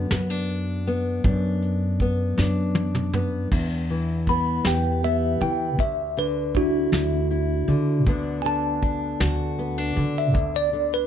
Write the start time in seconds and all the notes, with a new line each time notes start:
Already playing: B3 D4 F#4
0.11 F#2 D3 B3, snare, closed hi-hat
0.30 D4
0.49 closed hi-hat
0.87 B3, closed hi-hat
1.24 F#2 D4, kick, closed hi-hat
1.62 closed hi-hat
2.00 B3, kick, closed hi-hat
2.38 F#2 D3 D4, snare
2.75 high tom
2.95 mid tom
3.13 B3, mid tom
3.51 E2, kick, crash
3.90 E3, closed hi-hat
4.27 B3 B5, kick, closed hi-hat
4.65 E2 G4 G5, snare, closed hi-hat
5.03 B3 E5, closed hi-hat
5.41 E3 G5, closed hi-hat
5.79 D2 E5, kick, closed hi-hat
6.17 D3 B4, closed hi-hat
6.55 D4 E4 F#4, kick, closed hi-hat
6.92 D2 E4, snare, closed hi-hat
7.30 E4, closed hi-hat
7.68 D3, closed hi-hat
8.06 D2 D3 B3 D4 F#4, kick, closed hi-hat
8.42 D3 G#5, closed hi-hat
8.46 A5
8.82 D4, kick, closed hi-hat
9.20 D2 F#4, snare, closed hi-hat
9.59 B3, closed hi-hat
9.78 D4
9.96 D3, closed hi-hat
10.18 E5
10.34 D2, kick, closed hi-hat
10.56 D5
10.73 D3, closed hi-hat
10.94 B4